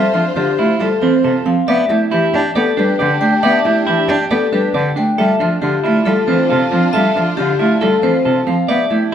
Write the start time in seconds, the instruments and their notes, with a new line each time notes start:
Already playing: string section F4 C5, clean electric guitar A4, vibraphone E5
0.14 cello F3, clean electric guitar D4, oboe F4
0.36 cello D3, clean electric guitar D4, oboe F4, vibraphone G4
0.58 cello A3, clean electric guitar E4, oboe F4
0.80 cello G3, oboe F4, vibraphone A4, clean electric guitar A4
1.01 cello E3, clean electric guitar C4, oboe F4, vibraphone C5
1.24 cello C3, oboe F4, clean electric guitar A4
1.46 cello F3, clean electric guitar C4, vibraphone F5
1.67 cello B3, string section D4 G4, oboe G4, clean electric guitar D5, vibraphone E5
1.89 cello A3, clean electric guitar E4, oboe G4
2.11 cello E3, clean electric guitar E4, oboe G4, vibraphone G4
2.33 cello D4, oboe G4, clean electric guitar G4
2.55 cello B3, oboe G4, vibraphone A4, clean electric guitar D5
2.77 cello G3, clean electric guitar D4, oboe G4, vibraphone B4
2.99 cello D3, oboe G4, clean electric guitar D5
3.21 cello A3, clean electric guitar D4, oboe G4, vibraphone G5
3.42 cello B3, oboe G4, clean electric guitar D5, vibraphone E5
3.65 cello A3, clean electric guitar E4, oboe G4
3.87 cello E3, clean electric guitar E4, oboe G4, vibraphone G4
4.08 cello D4, clean electric guitar G4, oboe G4
4.31 cello B3, oboe G4, vibraphone A4, clean electric guitar D5
4.53 cello G3, clean electric guitar D4, oboe G4, vibraphone B4
4.74 cello D3, oboe G4, clean electric guitar D5
4.96 cello A3, clean electric guitar D4, vibraphone G5
5.18 cello G3, string section D4 F4, oboe F4, clean electric guitar A4, vibraphone E5
5.40 cello F3, clean electric guitar D4, oboe F4
5.62 cello D3, clean electric guitar D4, oboe F4, vibraphone G4
5.84 cello A3, clean electric guitar E4, oboe F4
6.05 cello G3, oboe F4, vibraphone A4, clean electric guitar A4
6.27 cello E3, clean electric guitar C4, oboe F4, vibraphone C5
6.49 cello C3, oboe F4, clean electric guitar A4
6.71 cello F3, clean electric guitar C4, oboe F4, vibraphone F5
6.93 cello G3, oboe F4, clean electric guitar A4, vibraphone E5
7.15 cello F3, clean electric guitar D4, oboe F4
7.37 cello D3, clean electric guitar D4, oboe F4, vibraphone G4
7.59 cello A3, clean electric guitar E4, oboe F4
7.81 cello G3, oboe F4, vibraphone A4, clean electric guitar A4
8.03 cello E3, clean electric guitar C4, oboe F4, vibraphone C5
8.25 cello C3, oboe F4, clean electric guitar A4
8.47 cello F3, clean electric guitar C4, vibraphone F5
8.68 cello B3, string section D4 G4, oboe G4, clean electric guitar D5, vibraphone E5
8.90 cello A3, clean electric guitar E4, oboe G4